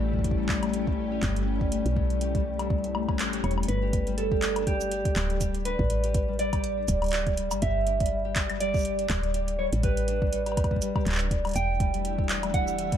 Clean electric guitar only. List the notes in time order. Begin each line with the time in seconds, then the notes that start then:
3.44 C#5
3.68 B4
4.18 A4
4.67 G4
5.65 B4
6.39 D5
7.62 E5
8.60 D5
9.59 C#5
9.84 B4
11.56 G5
12.54 F#5